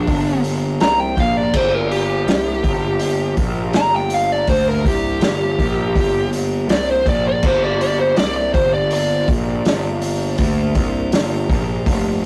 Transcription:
Already playing: tonewheel organ A#3 D4 G4, lead electric guitar D4
0.07 picked electric bass G1, kick, open hi-hat
0.44 open hi-hat
0.80 picked electric bass C2, lead electric guitar A#5, snare, open hi-hat
1.00 lead electric guitar G5
1.17 picked electric bass A#1, lead electric guitar F5, kick, open hi-hat
1.37 lead electric guitar D5
1.52 picked electric bass G1, tonewheel organ A#3 D4 G4, kick, crash
1.56 lead electric guitar C5
1.75 lead electric guitar A#4
1.91 lead electric guitar G4, open hi-hat
2.26 picked electric bass C2, snare, open hi-hat
2.63 picked electric bass G1, kick, open hi-hat
2.99 open hi-hat
3.37 picked electric bass A#1, kick, open hi-hat
3.73 picked electric bass G1, lead electric guitar A#5, snare, open hi-hat
3.96 lead electric guitar G5
4.10 open hi-hat
4.14 lead electric guitar F5
4.32 lead electric guitar D5
4.47 picked electric bass D2, tonewheel organ A#3 D4 G4, lead electric guitar C5, kick, open hi-hat
4.68 lead electric guitar A#4
4.85 picked electric bass C2, lead electric guitar G4, kick, open hi-hat
5.20 picked electric bass G1, snare, open hi-hat
5.59 picked electric bass A#1, kick, open hi-hat
5.95 picked electric bass G1, kick, open hi-hat
6.33 open hi-hat
6.68 picked electric bass C2, lead electric guitar D5, snare, open hi-hat
6.91 lead electric guitar C5
7.06 picked electric bass A#1, lead electric guitar D5, kick, open hi-hat
7.28 lead electric guitar D5
7.43 picked electric bass G1, tonewheel organ A#3 D4 G4, kick, crash
7.47 lead electric guitar C5
7.64 lead electric guitar D5
7.81 lead electric guitar D5, open hi-hat
8.00 lead electric guitar C5
8.16 picked electric bass C2, lead electric guitar D5, snare, open hi-hat
8.36 lead electric guitar D5
8.54 picked electric bass G1, lead electric guitar C5, kick, open hi-hat
8.74 lead electric guitar D5
8.91 lead electric guitar D5, open hi-hat
9.27 picked electric bass A#1, kick, open hi-hat
9.65 picked electric bass G1, snare, open hi-hat
10.02 open hi-hat
10.38 picked electric bass D2, tonewheel organ A#3 D4 G4, kick, open hi-hat
10.75 picked electric bass C2, kick, open hi-hat
11.12 picked electric bass G1, snare, open hi-hat
11.49 picked electric bass A#1, kick, open hi-hat
11.86 picked electric bass F1, kick, open hi-hat

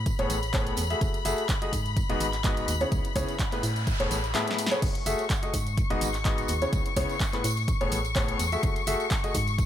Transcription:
Already playing: fm bass A2, string section B5
0.06 kick, closed hi-hat, tambourine
0.18 fm bass E1, upright piano A2 B3 G#4 A4 C#5, closed hi-hat, tambourine
0.30 fm bass A1, open hi-hat, tambourine
0.43 closed hi-hat, tambourine
0.54 upright piano A2 B3 G#4 A4 C#5, kick, clap, closed hi-hat, tambourine
0.67 closed hi-hat, tambourine
0.77 fm bass E2, open hi-hat, tambourine
0.90 upright piano A3 F#4 G#4 E5, closed hi-hat, tambourine
1.01 fm bass F#1, kick, closed hi-hat, tambourine
1.14 closed hi-hat, tambourine
1.25 fm bass F#1, upright piano A3 F#4 G#4 E5, open hi-hat, tambourine
1.38 closed hi-hat, tambourine
1.49 kick, clap, closed hi-hat, tambourine
1.62 upright piano A3 F#4 G#4 D#5, closed hi-hat, tambourine
1.73 fm bass G#2, kick, open hi-hat, tambourine
1.85 closed hi-hat, tambourine
1.96 kick, closed hi-hat, tambourine
2.09 fm bass D#1, upright piano G#2 B3 F#4 G#4 D#5, closed hi-hat, tambourine
2.20 fm bass G#1, open hi-hat, tambourine
2.33 clap, closed hi-hat, tambourine
2.44 upright piano G#2 B3 F#4 G#4 D#5, kick, clap, closed hi-hat, tambourine
2.57 closed hi-hat, tambourine
2.68 fm bass D#2, open hi-hat, tambourine
2.80 upright piano C#3 B3 E4 G#4 C#5, closed hi-hat, tambourine
2.92 fm bass C#2, kick, closed hi-hat, tambourine, noise sweep
3.04 closed hi-hat, tambourine
3.16 fm bass C#2, upright piano C#3 B3 E4 G#4 C#5, kick, open hi-hat, tambourine
3.29 closed hi-hat, tambourine
3.39 kick, clap, closed hi-hat, tambourine
3.52 upright piano A2 B3 E4 G#4 B4, clap, closed hi-hat, tambourine
3.63 fm bass A2, open hi-hat, tambourine
3.76 closed hi-hat, tambourine
3.87 kick, closed hi-hat, tambourine
4.00 fm bass E1, upright piano A2 B3 G#4 A4 C#5, closed hi-hat, tambourine
4.11 fm bass A1, open hi-hat, tambourine
4.24 closed hi-hat, tambourine
4.35 upright piano A2 B3 G#4 A4 E5, snare, clap, closed hi-hat, tambourine
4.47 snare, closed hi-hat, tambourine
4.58 open hi-hat, tambourine
4.66 snare
4.71 upright piano B3 G#4 A4 C#5, closed hi-hat, tambourine
4.82 fm bass F#1, string section C#6, kick, closed hi-hat, crash, tambourine
4.95 closed hi-hat, tambourine
5.06 fm bass F#1, upright piano A3 F#4 G#4 E5, open hi-hat, tambourine
5.18 closed hi-hat, tambourine
5.30 kick, clap, closed hi-hat, tambourine
5.42 upright piano A3 F#4 G#4 D#5, closed hi-hat, tambourine
5.53 fm bass G#2, kick, open hi-hat, tambourine
5.67 closed hi-hat, tambourine
5.78 kick, closed hi-hat, tambourine
5.90 fm bass D#1, upright piano G#2 B3 F#4 G#4 D#5, closed hi-hat, tambourine
6.01 fm bass G#1, open hi-hat, tambourine
6.14 clap, closed hi-hat, tambourine
6.25 upright piano G#2 B3 F#4 G#4 D#5, kick, clap, closed hi-hat, tambourine
6.38 closed hi-hat, tambourine
6.48 fm bass D#2, open hi-hat, tambourine
6.62 upright piano C#3 B3 E4 G#4 C#5, closed hi-hat, tambourine
6.73 fm bass C#2, kick, closed hi-hat, tambourine
6.86 closed hi-hat, tambourine
6.96 fm bass C#2, upright piano C#3 B3 E4 G#4 C#5, kick, open hi-hat, tambourine
7.09 closed hi-hat, tambourine
7.20 kick, clap, closed hi-hat, tambourine
7.33 upright piano A2 B3 E4 G#4 B4, clap, closed hi-hat, tambourine
7.44 fm bass A2, open hi-hat, tambourine
7.57 closed hi-hat, tambourine
7.68 kick, closed hi-hat, tambourine
7.81 fm bass E1, upright piano A2 B3 G#4 A4 C#5, closed hi-hat, tambourine
7.92 fm bass A1, open hi-hat, tambourine
8.05 closed hi-hat, tambourine
8.16 upright piano A2 B3 G#4 A4 C#5, kick, clap, closed hi-hat, tambourine
8.28 closed hi-hat, tambourine
8.39 fm bass E2, open hi-hat, tambourine
8.52 upright piano A3 F#4 G#4 E5, closed hi-hat, tambourine
8.63 fm bass F#1, kick, closed hi-hat, tambourine
8.76 closed hi-hat, tambourine
8.87 fm bass F#1, upright piano A3 F#4 G#4 E5, open hi-hat, tambourine
9.00 closed hi-hat, tambourine
9.10 kick, clap, closed hi-hat, tambourine
9.24 upright piano A3 F#4 G#4 D#5, closed hi-hat, tambourine
9.34 fm bass G#2, kick, open hi-hat, tambourine
9.47 closed hi-hat, tambourine
9.58 kick, closed hi-hat, tambourine

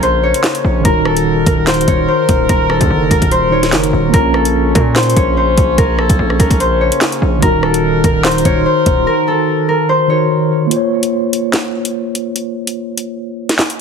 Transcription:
Already playing: 808-style bass A#1, brass ensemble C#3 A#3 C#4, tine electric piano A#3 C#4 F4 A#4, harp A#4
0.03 harp C5, closed hi-hat
0.23 harp C#5
0.34 closed hi-hat
0.44 snare, clap
0.55 closed hi-hat
0.64 808-style bass A#1
0.81 tine electric piano D#3 D#4
0.85 808-style bass D#1, brass ensemble D#3 D#4 F#4 A#4, tine electric piano F#4, harp A#4, kick, closed hi-hat
0.90 tine electric piano A#4
1.05 harp A4, cross-stick
1.17 closed hi-hat
1.46 808-style bass D#1, harp A#4, kick, closed hi-hat
1.67 harp C5, snare, clap, closed hi-hat
1.74 closed hi-hat
1.81 closed hi-hat
1.88 808-style bass D#1, harp C#5, kick, closed hi-hat
2.08 harp C5
2.29 808-style bass D#1, kick, closed hi-hat
2.49 808-style bass D#1, harp A#4, kick, closed hi-hat
2.70 harp A4, cross-stick
2.81 808-style bass D#2, kick, closed hi-hat
2.90 808-style bass F#1
3.11 808-style bass D#1, harp A#4, kick, closed hi-hat
3.22 808-style bass D#1, kick, closed hi-hat
3.31 harp C5, closed hi-hat
3.50 tine electric piano D#3 D#4 F#4, harp C#5
3.54 tine electric piano A#4
3.63 snare, closed hi-hat
3.73 808-style bass F#1, snare, clap
3.84 closed hi-hat
3.93 808-style bass D#1
4.09 tine electric piano A#3 F4
4.14 808-style bass A#1, brass ensemble C#3 A#3 C#4, harp A#4, tine electric piano A#4, kick, closed hi-hat
4.19 tine electric piano C#4
4.34 harp A4, cross-stick
4.45 closed hi-hat
4.75 808-style bass A#2, harp A#4, kick, closed hi-hat
4.96 harp C5, snare, clap, closed hi-hat
5.03 closed hi-hat
5.10 closed hi-hat
5.16 808-style bass A#1, harp C#5, kick, closed hi-hat
5.37 harp C5
5.58 808-style bass A#1, kick, closed hi-hat
5.78 808-style bass A#1, harp A#4, kick, closed hi-hat
5.99 harp A4, cross-stick
6.10 808-style bass A#1, kick, closed hi-hat
6.19 808-style bass A#1
6.30 cross-stick
6.40 808-style bass A#1, harp A#4, kick, closed hi-hat
6.51 808-style bass A#1, kick, closed hi-hat
6.60 harp C5, closed hi-hat
6.81 harp C#5
6.92 closed hi-hat
7.01 snare, clap
7.12 closed hi-hat
7.22 808-style bass A#1
7.38 tine electric piano D#3 D#4
7.42 808-style bass D#1, brass ensemble D#3 D#4 F#4 A#4, tine electric piano F#4, harp A#4, kick, closed hi-hat
7.48 tine electric piano A#4
7.63 harp A4, cross-stick
7.74 closed hi-hat
8.04 808-style bass D#1, harp A#4, kick, closed hi-hat
8.25 harp C5, snare, clap, closed hi-hat
8.31 closed hi-hat
8.38 closed hi-hat
8.45 808-style bass D#1, harp C#5, kick, closed hi-hat
8.66 harp C5
8.86 808-style bass D#1, kick, closed hi-hat
9.07 harp A#4
9.28 harp A4
9.69 harp A#4
9.89 harp C5
10.07 tine electric piano D#3 D#4 F#4, harp C#5
10.12 tine electric piano A#4
10.67 tine electric piano A#3 F4
10.71 tine electric piano C5, closed hi-hat
10.76 tine electric piano C#5
11.03 closed hi-hat
11.33 closed hi-hat
11.53 snare, clap, closed hi-hat
11.85 closed hi-hat
12.15 closed hi-hat
12.36 closed hi-hat
12.67 closed hi-hat
12.98 closed hi-hat
13.49 snare, closed hi-hat
13.59 snare, clap
13.70 closed hi-hat

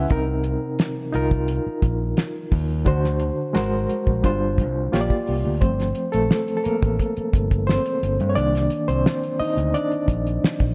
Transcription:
Already playing: reed electric piano C#3 C#4 E4 B4 E5 F#5 G#5
0.09 fingered electric bass C2, reed electric piano C3 C4 D#4 A#4, kick, closed hi-hat
0.44 closed hi-hat
0.79 snare, closed hi-hat
1.13 fingered electric bass C2, reed electric piano D#4 F4 A#4, closed hi-hat
1.31 kick
1.48 closed hi-hat
1.67 muted fingered electric bass stroke
1.82 fingered electric bass A#1, kick, closed hi-hat
2.17 snare, closed hi-hat
2.52 fingered electric bass D#2, kick, open hi-hat
2.85 fingered electric bass D2, reed electric piano D3 D4 F#4 C5, kick, closed hi-hat
3.04 snare
3.20 closed hi-hat
3.53 fingered electric bass G#1, reed electric piano G#3 F#4 A#4 C5, snare, closed hi-hat
3.90 muted fingered electric bass stroke, closed hi-hat
4.07 fingered electric bass A#1, kick
4.23 fingered electric bass G1, reed electric piano G3 D4 F4 C5, kick, closed hi-hat
4.58 fingered electric bass C2, kick, closed hi-hat
4.92 fingered electric bass A#1, reed electric piano A#3 F4 G4 C#5, snare, closed hi-hat
5.01 reed electric piano D5
5.10 kick
5.27 fingered electric bass C2, open hi-hat
5.45 fingered electric bass D2
5.61 fingered electric bass G1, reed electric piano F3 A3 C4 C5, kick, closed hi-hat
5.80 snare, closed hi-hat
5.95 closed hi-hat
6.12 fingered electric bass A#1, reed electric piano A3 A4, closed hi-hat
6.31 snare
6.48 closed hi-hat
6.57 reed electric piano A4
6.64 reed electric piano A#3 A#4, muted fingered electric bass stroke, closed hi-hat
6.83 fingered electric bass A1, kick, closed hi-hat
6.99 kick, closed hi-hat
7.17 muted fingered electric bass stroke, closed hi-hat
7.33 fingered electric bass G1, kick, closed hi-hat
7.51 kick, closed hi-hat
7.67 reed electric piano C4 C5, snare
7.86 closed hi-hat
8.03 fingered electric bass G1, closed hi-hat
8.20 fingered electric bass G2, closed hi-hat
8.29 reed electric piano C#5
8.35 fingered electric bass C2, reed electric piano D#3 A#3 D4 D5, closed hi-hat
8.55 snare, closed hi-hat
8.70 closed hi-hat
8.88 fingered electric bass C2, reed electric piano C4 C5, closed hi-hat
9.06 snare
9.24 closed hi-hat
9.40 reed electric piano D#4 D#5, muted fingered electric bass stroke, open hi-hat
9.57 fingered electric bass D2, closed hi-hat
9.74 reed electric piano D4 D5, closed hi-hat
9.92 closed hi-hat
10.08 fingered electric bass A#1, kick, closed hi-hat
10.27 closed hi-hat
10.44 muted fingered electric bass stroke, snare
10.60 fingered electric bass A#1, kick, closed hi-hat

